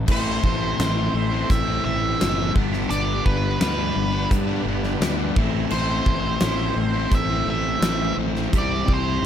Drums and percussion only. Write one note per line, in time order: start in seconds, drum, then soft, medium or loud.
0.08 kick loud
0.08 crash loud
0.44 kick medium
0.80 snare loud
0.80 closed hi-hat medium
1.50 kick loud
1.50 closed hi-hat medium
2.21 snare loud
2.21 closed hi-hat medium
2.56 kick loud
2.73 snare soft
2.91 closed hi-hat medium
3.26 kick medium
3.61 snare loud
3.61 closed hi-hat medium
4.31 kick loud
4.31 closed hi-hat medium
4.84 snare soft
5.02 snare loud
5.02 closed hi-hat medium
5.36 kick loud
5.70 crash medium
6.06 kick medium
6.41 snare loud
6.41 closed hi-hat medium
7.12 kick loud
7.12 closed hi-hat medium
7.82 snare loud
7.82 closed hi-hat medium
8.36 snare soft
8.53 kick loud
8.53 closed hi-hat medium
8.88 kick medium